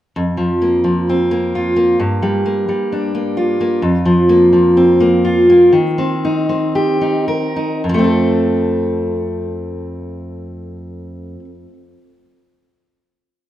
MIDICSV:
0, 0, Header, 1, 2, 480
1, 0, Start_track
1, 0, Tempo, 461184
1, 160, Time_signature, 4, 2, 24, 8
1, 4481, Tempo, 482315
1, 6401, Tempo, 537634
1, 7841, Tempo, 571973
1, 12583, End_track
2, 0, Start_track
2, 0, Title_t, "Steel-string acoustic guitar"
2, 0, Program_c, 0, 25
2, 167, Note_on_c, 0, 41, 64
2, 389, Note_on_c, 0, 53, 50
2, 642, Note_on_c, 0, 58, 45
2, 862, Note_off_c, 0, 53, 0
2, 874, Note_on_c, 0, 53, 48
2, 1139, Note_on_c, 0, 60, 44
2, 1361, Note_off_c, 0, 58, 0
2, 1365, Note_on_c, 0, 58, 46
2, 1615, Note_on_c, 0, 65, 43
2, 1831, Note_off_c, 0, 58, 0
2, 1835, Note_on_c, 0, 58, 45
2, 2048, Note_off_c, 0, 53, 0
2, 2072, Note_off_c, 0, 41, 0
2, 2076, Note_on_c, 0, 43, 61
2, 2088, Note_off_c, 0, 65, 0
2, 2090, Note_off_c, 0, 60, 0
2, 2315, Note_on_c, 0, 55, 51
2, 2552, Note_off_c, 0, 58, 0
2, 2557, Note_on_c, 0, 58, 46
2, 2782, Note_off_c, 0, 55, 0
2, 2794, Note_on_c, 0, 55, 50
2, 3044, Note_on_c, 0, 62, 44
2, 3263, Note_off_c, 0, 58, 0
2, 3275, Note_on_c, 0, 58, 45
2, 3507, Note_on_c, 0, 65, 46
2, 3741, Note_off_c, 0, 58, 0
2, 3753, Note_on_c, 0, 58, 47
2, 3968, Note_off_c, 0, 58, 0
2, 3969, Note_off_c, 0, 55, 0
2, 3970, Note_off_c, 0, 43, 0
2, 3973, Note_off_c, 0, 62, 0
2, 3978, Note_on_c, 0, 41, 65
2, 4221, Note_on_c, 0, 53, 53
2, 4468, Note_on_c, 0, 58, 51
2, 4689, Note_off_c, 0, 53, 0
2, 4701, Note_on_c, 0, 53, 49
2, 4943, Note_on_c, 0, 60, 46
2, 5164, Note_off_c, 0, 58, 0
2, 5176, Note_on_c, 0, 58, 47
2, 5405, Note_off_c, 0, 65, 0
2, 5417, Note_on_c, 0, 65, 49
2, 5654, Note_off_c, 0, 58, 0
2, 5666, Note_on_c, 0, 58, 44
2, 5868, Note_off_c, 0, 53, 0
2, 5878, Note_off_c, 0, 58, 0
2, 5894, Note_off_c, 0, 41, 0
2, 5894, Note_on_c, 0, 51, 61
2, 5903, Note_off_c, 0, 65, 0
2, 6137, Note_off_c, 0, 60, 0
2, 6149, Note_on_c, 0, 60, 52
2, 6412, Note_on_c, 0, 63, 46
2, 6620, Note_off_c, 0, 60, 0
2, 6631, Note_on_c, 0, 60, 55
2, 6863, Note_on_c, 0, 67, 51
2, 7086, Note_off_c, 0, 63, 0
2, 7097, Note_on_c, 0, 63, 44
2, 7329, Note_off_c, 0, 67, 0
2, 7333, Note_on_c, 0, 70, 52
2, 7577, Note_off_c, 0, 63, 0
2, 7588, Note_on_c, 0, 63, 44
2, 7806, Note_off_c, 0, 70, 0
2, 7810, Note_off_c, 0, 63, 0
2, 7811, Note_off_c, 0, 60, 0
2, 7834, Note_on_c, 0, 41, 52
2, 7837, Note_off_c, 0, 51, 0
2, 7879, Note_on_c, 0, 53, 57
2, 7920, Note_on_c, 0, 57, 53
2, 7957, Note_on_c, 0, 60, 46
2, 8003, Note_on_c, 0, 69, 44
2, 10772, Note_off_c, 0, 41, 0
2, 10816, Note_off_c, 0, 53, 0
2, 10857, Note_off_c, 0, 57, 0
2, 10894, Note_off_c, 0, 60, 0
2, 10940, Note_off_c, 0, 69, 0
2, 12583, End_track
0, 0, End_of_file